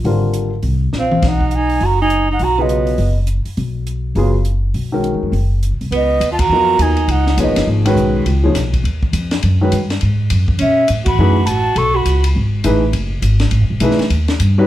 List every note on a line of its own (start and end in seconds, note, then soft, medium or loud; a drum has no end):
0.04 0.61 G#1 medium
0.04 0.49 D3 soft
0.04 0.49 G3 soft
0.04 0.49 C4 soft
0.04 0.49 F4 soft
0.04 0.50 A#4 medium
0.04 open hi-hat soft
0.34 closed hi-hat soft
0.63 0.91 C2 medium
0.63 open hi-hat soft
0.93 1.21 A#1 medium
0.93 snare soft
0.99 1.29 C4 medium
0.99 1.29 F5 medium
1.12 mid tom soft
1.23 1.78 B1 medium
1.23 kick medium
1.23 snare soft
1.23 ride medium
1.28 1.55 D#4 medium
1.28 1.57 F#5 medium
1.41 kick soft
1.51 1.85 D#4 medium
1.51 closed hi-hat soft
1.55 1.87 G#5 medium
1.70 open hi-hat soft
1.80 2.37 F#1 medium
1.80 2.00 F#4 medium
1.80 open hi-hat soft
1.86 2.01 A#5 medium
2.01 2.28 D#4 medium
2.01 2.28 G#5 medium
2.10 closed hi-hat soft
2.31 2.44 D#4 medium
2.31 2.45 F#5 medium
2.39 2.96 B1 medium
2.39 2.61 F#4 medium
2.39 open hi-hat soft
2.44 2.63 A#5 medium
2.58 2.97 C#3 soft
2.58 2.97 F#3 soft
2.58 3.17 B3 medium
2.58 2.97 B3 soft
2.58 2.97 F4 soft
2.58 2.98 G#4 soft
2.58 3.19 D#5 medium
2.69 closed hi-hat soft
2.87 open hi-hat soft
2.98 3.43 F#1 medium
2.98 open hi-hat soft
3.27 closed hi-hat soft
3.45 muted upright bass stroke soft
3.45 open hi-hat soft
3.57 4.13 B1 medium
3.57 open hi-hat soft
3.87 closed hi-hat soft
4.15 4.71 F#1 medium
4.15 4.32 C#3 medium
4.15 4.33 F#3 soft
4.15 4.33 B3 medium
4.15 4.33 F4 medium
4.15 4.33 G#4 medium
4.15 open hi-hat soft
4.45 closed hi-hat soft
4.74 5.11 B1 medium
4.74 open hi-hat soft
4.92 5.31 D#3 soft
4.92 5.31 G#3 soft
4.92 5.31 C#4 soft
4.92 5.32 F#4 soft
4.92 5.32 A#4 medium
5.04 closed hi-hat soft
5.14 5.22 D#2 medium
5.23 5.32 F#2 medium
5.32 5.69 F#1 medium
5.32 open hi-hat soft
5.63 closed hi-hat soft
5.71 5.80 B1 soft
5.81 5.90 C2 medium
5.81 open hi-hat soft
5.91 6.20 C#2 medium
5.91 6.28 B3 medium
5.91 ride soft
5.96 6.30 D#5 medium
6.20 6.49 D#2 medium
6.20 hi-hat pedal soft
6.20 ride medium
6.31 6.41 F4 medium
6.31 6.41 A5 medium
6.39 6.83 F#4 medium
6.39 6.83 A#5 loud
6.39 kick medium
6.39 ride medium
6.49 6.78 F2 medium
6.49 6.95 F#3 soft
6.49 6.95 B3 soft
6.49 6.96 F4 soft
6.49 6.95 A#4 soft
6.49 6.96 D#5 medium
6.79 7.07 D#2 medium
6.79 7.11 D#4 medium
6.79 7.13 G#5 medium
6.79 hi-hat pedal soft
6.79 ride medium
6.97 ride soft
7.07 7.37 C#2 medium
7.07 7.39 D#4 medium
7.07 7.39 F#5 medium
7.07 ride medium
7.27 snare soft
7.37 7.46 B1 medium
7.37 7.82 F3 soft
7.37 7.82 A#3 soft
7.37 7.67 B3 medium
7.37 7.83 D#4 soft
7.37 7.83 G#4 soft
7.37 7.83 C#5 medium
7.37 hi-hat pedal medium
7.37 ride medium
7.43 7.56 G#1 medium
7.43 7.68 D#5 medium
7.56 7.66 F#1 medium
7.56 snare soft
7.56 ride medium
7.67 7.95 G#1 medium
7.85 8.24 D#3 medium
7.85 8.24 G#3 medium
7.85 8.24 C#4 medium
7.85 8.25 F#4 medium
7.85 8.25 B4 medium
7.85 ride medium
7.96 8.25 B1 medium
7.96 hi-hat pedal medium
8.26 8.54 C#2 medium
8.26 ride medium
8.44 8.54 F3 medium
8.44 8.54 A#3 soft
8.44 8.55 D#4 soft
8.44 8.55 G#4 soft
8.44 8.55 C#5 medium
8.54 8.83 B1 medium
8.54 snare soft
8.54 hi-hat pedal medium
8.54 ride medium
8.74 kick soft
8.74 ride soft
8.84 9.12 D#2 medium
8.84 ride soft
9.03 kick medium
9.13 9.42 F2 medium
9.13 hi-hat pedal medium
9.13 ride medium
9.31 snare medium
9.31 ride soft
9.43 9.72 F#2 medium
9.43 ride medium
9.61 9.71 D#3 medium
9.61 9.72 G#3 medium
9.61 9.72 C#4 medium
9.61 9.72 F#4 soft
9.61 9.72 B4 medium
9.72 10.01 G2 medium
9.72 hi-hat pedal medium
9.72 ride medium
9.90 snare soft
9.90 ride soft
10.01 10.30 G#2 medium
10.01 ride soft
10.30 10.59 F#2 medium
10.30 hi-hat pedal soft
10.30 ride medium
10.48 kick medium
10.59 10.89 B2 medium
10.59 10.87 C#4 medium
10.59 10.88 E5 medium
10.59 ride medium
10.88 11.18 A2 medium
10.88 hi-hat pedal medium
10.88 ride medium
11.05 11.48 F#4 medium
11.05 11.47 B5 medium
11.05 kick medium
11.05 ride medium
11.18 11.46 F#2 medium
11.18 11.35 E3 medium
11.18 11.35 A3 medium
11.18 11.35 D#4 medium
11.18 11.35 G#4 medium
11.18 11.36 B4 medium
11.46 11.75 A1 medium
11.46 11.78 F#4 medium
11.46 11.79 A5 medium
11.46 hi-hat pedal medium
11.46 ride medium
11.76 12.05 B1 medium
11.76 11.97 A4 medium
11.76 11.98 C#6 medium
11.76 ride medium
11.95 12.24 F#4 medium
11.95 12.25 B5 medium
12.05 12.34 C#2 medium
12.05 hi-hat pedal medium
12.05 ride medium
12.24 ride medium
12.35 12.64 G#1 medium
12.64 12.92 A1 medium
12.64 12.81 E3 medium
12.64 12.81 A3 medium
12.64 12.81 D#4 medium
12.64 12.81 G#4 medium
12.64 12.82 B4 medium
12.64 hi-hat pedal soft
12.64 ride medium
12.93 13.21 F#1 medium
12.93 ride medium
13.22 13.51 G#1 medium
13.22 hi-hat pedal medium
13.22 ride medium
13.40 snare soft
13.40 ride soft
13.51 13.60 A1 medium
13.51 ride medium
13.60 13.70 F#1 medium
13.70 13.80 E1 medium
13.80 13.98 B1 medium
13.80 13.97 E3 medium
13.80 13.98 A3 medium
13.80 13.98 D#4 medium
13.80 13.98 G#4 medium
13.80 13.99 B4 medium
13.80 hi-hat pedal soft
13.80 ride medium
13.91 snare soft
13.99 muted upright bass stroke soft
13.99 snare soft
13.99 ride soft
14.10 14.39 D#2 medium
14.10 ride medium
14.28 snare medium
14.28 ride soft
14.40 14.67 G2 medium
14.40 hi-hat pedal medium
14.40 ride medium
14.58 14.67 G3 medium
14.58 14.67 C#4 medium
14.58 14.67 D#4 medium
14.58 14.67 F#4 medium
14.58 14.67 B4 medium